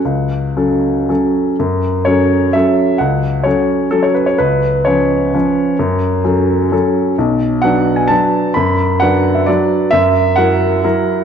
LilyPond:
\new Staff \with { instrumentName = "Grand piano" } { \time 3/4 \key fis \minor \tempo 4 = 129 << { fis''2 r4 | r4 cis''4 e''4 | fis''4 cis''4 a'16 cis''16 b'16 cis''16 | b'4 cis''2~ |
cis''2. | r4 fis''8. gis''16 a''4 | b''4 fis''8. e''16 d''4 | e''4 fis''2 | } \\ { cis,4 <fis cis' a'>4 <fis cis' a'>4 | fis,4 <fis cis' a'>4 <fis cis' a'>4 | cis,4 <fis cis' a'>4 <fis cis'>4 | cis,4 <eis cis' b'>4 <eis cis' b'>4 |
fis,4 <fis cis' a'>4 <fis cis' a'>4 | b,,4 <fis d' b'>4 <fis d' b'>4 | fis,4 <fis d' b'>4 <fis d' b'>4 | fis,4 <fis e' ais'>4 <fis e' ais'>4 | } >> }